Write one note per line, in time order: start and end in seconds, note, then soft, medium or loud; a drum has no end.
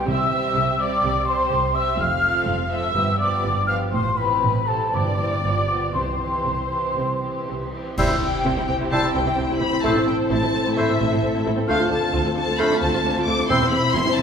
0.08 0.48 C2 medium
0.08 0.76 C3 medium
0.08 0.48 C3 medium
0.08 0.31 G3 soft
0.08 0.31 C4 soft
0.08 0.30 G4 soft
0.08 0.80 E5 medium
0.08 0.78 E6 medium
0.31 0.78 G3 medium
0.31 0.78 C4 soft
0.31 0.79 G4 medium
0.56 0.96 C2 medium
0.56 0.96 C3 medium
0.79 1.26 G3 medium
0.79 1.26 C4 medium
0.79 1.25 G4 soft
0.79 1.28 D5 medium
0.79 1.26 D6 medium
1.03 1.43 C2 medium
1.03 1.44 C3 medium
1.26 1.73 G3 soft
1.26 1.73 C4 soft
1.26 1.74 G4 medium
1.26 1.75 C5 medium
1.26 1.75 C6 medium
1.51 1.91 C2 medium
1.51 1.92 C3 medium
1.74 1.98 G3 medium
1.74 1.98 C4 medium
1.74 1.99 G4 soft
1.74 1.99 E5 medium
1.74 1.99 E6 medium
1.99 2.39 F1 medium
1.99 2.39 F2 medium
1.99 2.71 F5 medium
1.99 2.41 F6 medium
2.23 2.70 F3 soft
2.23 2.70 C4 medium
2.23 2.70 A4 medium
2.47 2.87 F1 medium
2.47 2.88 F2 medium
2.71 2.94 F3 soft
2.71 2.95 C4 soft
2.71 2.95 A4 soft
2.71 3.20 E5 medium
2.71 3.19 E6 medium
2.95 3.36 G1 medium
2.95 3.36 G2 medium
2.95 3.17 F3 medium
2.95 3.17 B3 medium
2.95 3.19 G4 soft
3.19 3.66 F3 soft
3.19 3.66 B3 soft
3.19 3.66 G4 medium
3.19 3.68 D5 medium
3.19 3.68 D6 medium
3.43 3.85 G1 medium
3.43 3.85 G2 medium
3.67 3.92 F3 soft
3.67 3.92 B3 soft
3.67 3.92 G4 soft
3.67 3.77 F5 medium
3.67 3.73 F6 medium
3.92 4.35 A1 medium
3.92 4.35 A2 medium
3.92 4.17 C5 medium
3.92 4.17 C6 medium
4.16 4.66 E3 medium
4.16 4.66 C4 soft
4.16 4.66 G4 soft
4.16 4.67 B4 medium
4.16 4.68 B5 medium
4.42 4.86 A1 medium
4.42 4.86 A2 medium
4.67 4.92 E3 soft
4.67 4.92 C4 soft
4.67 4.92 G4 soft
4.67 4.94 A4 medium
4.67 4.94 A5 medium
4.93 5.37 G1 medium
4.93 5.37 G2 medium
4.93 5.42 G2 medium
4.93 5.17 E3 soft
4.93 5.18 C4 soft
4.93 5.18 G4 soft
4.93 5.93 D5 medium
4.93 5.95 D6 medium
5.19 5.44 E3 soft
5.19 5.44 C4 soft
5.19 5.43 G4 soft
5.44 5.87 G1 medium
5.44 5.87 G2 medium
5.44 5.67 F3 soft
5.44 5.67 B3 soft
5.44 5.68 G4 soft
5.68 5.94 F3 soft
5.68 5.94 B3 soft
5.68 5.93 G4 soft
5.94 6.38 C2 medium
5.94 6.37 C3 medium
5.94 6.67 C3 medium
5.94 6.18 E3 soft
5.94 6.17 C4 soft
5.94 6.18 G4 soft
5.94 7.74 C5 medium
5.94 7.73 C6 medium
6.19 6.69 E3 soft
6.19 6.69 C4 soft
6.19 6.70 G4 soft
6.45 6.89 C2 medium
6.45 6.89 C3 medium
6.70 7.21 E3 soft
6.70 7.21 C4 soft
6.70 7.20 G4 soft
6.97 7.40 C2 medium
6.97 7.40 C3 medium
7.21 7.72 E3 soft
7.21 7.71 C4 soft
7.21 7.72 G4 soft
7.48 7.90 C2 medium
7.48 7.90 C3 medium
7.73 7.97 E3 soft
7.73 7.97 C4 soft
7.73 7.97 G4 soft
7.98 8.03 C2 medium
7.98 8.03 C3 medium
7.98 8.15 G3 medium
7.98 8.03 C4 medium
7.98 11.65 C4 medium
7.98 8.14 E4 medium
7.98 8.03 E4 medium
7.98 11.65 E4 medium
7.98 9.80 G4 medium
7.98 8.15 C5 medium
7.98 11.65 C5 medium
7.98 8.06 E5 medium
7.98 8.20 E6 medium
7.98 concert bass drum medium
7.98 crash medium
8.09 8.14 C3 medium
8.09 8.14 C4 soft
8.09 8.14 E4 soft
8.21 8.27 C2 soft
8.21 8.27 C3 medium
8.21 8.26 C4 medium
8.21 8.67 G5 medium
8.44 8.50 C2 medium
8.44 8.50 C3 medium
8.44 8.49 C4 medium
8.44 8.49 E4 medium
8.57 8.61 C3 soft
8.57 8.61 C4 medium
8.57 8.61 E4 soft
8.68 8.73 C2 medium
8.68 8.73 C3 medium
8.68 8.73 C4 soft
8.68 8.76 G5 medium
8.79 8.84 C3 medium
8.79 8.84 C4 medium
8.79 8.84 E4 medium
8.91 8.96 C2 medium
8.91 8.96 C3 medium
8.91 9.08 G3 medium
8.91 8.96 C4 medium
8.91 9.07 E4 medium
8.91 8.96 E4 medium
8.91 9.08 C5 medium
8.91 9.14 A5 medium
8.91 9.13 E6 medium
9.03 9.08 C3 medium
9.03 9.07 C4 medium
9.14 9.19 C2 medium
9.14 9.19 C3 medium
9.14 9.19 C4 medium
9.14 9.19 E4 medium
9.14 9.60 G5 medium
9.26 9.31 C3 soft
9.26 9.31 C4 medium
9.26 9.31 E4 soft
9.36 9.43 C2 soft
9.36 9.43 C3 medium
9.36 9.42 C4 medium
9.49 9.54 C3 medium
9.49 9.53 C4 medium
9.49 9.53 E4 medium
9.60 9.66 C2 medium
9.60 9.66 C3 medium
9.60 9.65 C4 medium
9.60 9.65 E4 medium
9.60 9.83 B5 medium
9.71 9.77 C3 medium
9.71 9.76 C4 medium
9.83 9.89 A1 medium
9.83 9.89 A2 medium
9.83 10.00 A3 medium
9.83 9.88 C4 medium
9.83 9.87 E4 medium
9.83 10.01 E4 medium
9.83 13.46 A4 medium
9.83 10.01 C5 medium
9.83 10.07 A5 medium
9.83 10.06 E6 medium
9.95 10.01 A2 medium
9.95 10.00 C4 soft
9.95 10.00 E4 soft
10.07 10.12 A1 soft
10.07 10.12 A2 soft
10.07 10.11 C4 soft
10.07 10.15 G5 medium
10.30 10.36 A1 medium
10.30 10.36 A2 medium
10.30 10.35 C4 medium
10.30 10.35 E4 medium
10.30 10.76 A5 medium
10.43 10.47 A2 medium
10.43 10.47 C4 soft
10.43 10.47 E4 soft
10.54 10.59 A1 soft
10.54 10.59 A2 medium
10.54 10.58 C4 soft
10.65 10.71 A2 medium
10.65 10.70 C4 medium
10.65 10.70 E4 medium
10.77 10.82 A1 medium
10.77 10.82 A2 medium
10.77 10.93 A3 medium
10.77 10.82 C4 soft
10.77 10.81 E4 medium
10.77 10.93 E4 medium
10.77 10.94 C5 medium
10.77 11.45 E5 medium
10.77 10.99 E6 medium
10.88 10.94 A2 medium
10.88 10.93 C4 soft
11.00 11.05 A1 medium
11.00 11.06 A2 medium
11.00 11.04 C4 medium
11.00 11.05 E4 medium
11.12 11.17 A2 medium
11.12 11.16 C4 medium
11.12 11.16 E4 medium
11.23 11.28 A1 soft
11.23 11.28 A2 medium
11.23 11.28 C4 soft
11.34 11.40 A2 medium
11.34 11.39 C4 medium
11.34 11.39 E4 medium
11.46 11.51 A1 medium
11.46 11.51 A2 medium
11.46 11.51 C4 medium
11.46 11.51 E4 medium
11.56 11.62 A2 soft
11.56 11.61 C4 medium
11.67 11.73 D2 medium
11.67 11.72 A3 medium
11.67 11.84 A3 medium
11.67 14.22 C4 medium
11.67 11.84 D4 medium
11.67 11.72 F4 medium
11.67 13.50 F4 medium
11.67 11.84 C5 medium
11.67 14.22 C5 medium
11.67 11.90 F5 medium
11.67 11.89 F6 medium
11.79 11.85 D2 medium
11.79 11.84 A3 soft
11.79 11.84 F4 soft
11.91 11.95 D2 medium
11.91 11.96 D2 soft
11.91 11.96 A3 soft
11.91 11.95 D4 medium
11.91 12.35 A5 medium
12.13 12.18 D2 medium
12.13 12.17 A3 medium
12.13 12.18 F4 medium
12.25 12.29 D2 medium
12.25 12.30 A3 soft
12.25 12.30 F4 soft
12.36 12.41 D2 soft
12.36 12.41 D2 medium
12.36 12.41 A3 medium
12.36 12.40 D4 medium
12.36 12.59 A5 medium
12.47 12.52 D2 medium
12.47 12.52 A3 medium
12.47 12.52 F4 medium
12.58 12.64 D2 medium
12.58 12.64 A3 soft
12.58 12.75 A3 medium
12.58 12.75 D4 medium
12.58 12.64 F4 medium
12.58 12.75 C5 medium
12.58 12.81 B5 loud
12.58 12.81 F6 medium
12.71 12.75 D2 medium
12.71 12.75 A3 medium
12.71 12.76 D4 medium
12.81 12.87 D2 medium
12.81 12.87 A3 medium
12.81 12.87 F4 medium
12.81 13.26 A5 medium
12.94 12.99 D2 medium
12.94 12.99 A3 medium
12.94 12.99 F4 medium
13.05 13.09 D2 medium
13.05 13.10 D2 medium
13.05 13.10 A3 medium
13.05 13.10 D4 medium
13.17 13.21 D2 medium
13.17 13.21 A3 medium
13.17 13.21 F4 medium
13.26 13.32 D2 medium
13.26 13.32 A3 medium
13.26 13.33 F4 medium
13.26 13.49 D6 medium
13.38 13.43 D2 medium
13.38 13.43 A3 medium
13.38 13.43 D4 medium
13.48 13.54 E1 medium
13.48 13.55 E2 medium
13.48 13.54 C4 medium
13.48 13.66 C4 medium
13.48 13.54 E4 medium
13.48 14.22 E4 medium
13.48 13.66 E4 medium
13.48 13.66 C5 medium
13.48 13.71 C6 loud
13.48 13.71 E6 medium
13.61 13.66 E2 medium
13.61 13.66 C4 medium
13.61 13.65 E4 soft
13.71 13.77 E1 medium
13.71 13.77 E2 medium
13.71 13.76 C4 medium
13.71 13.94 B5 loud
13.93 13.99 E1 medium
13.93 14.00 E2 medium
13.93 13.99 C4 medium
13.93 13.99 E4 medium
13.93 14.16 C6 loud
14.06 14.11 E2 medium
14.06 14.10 C4 medium
14.06 14.10 E4 medium
14.16 14.22 E1 medium
14.16 14.22 E2 medium
14.16 14.22 C4 medium
14.16 14.22 A5 loud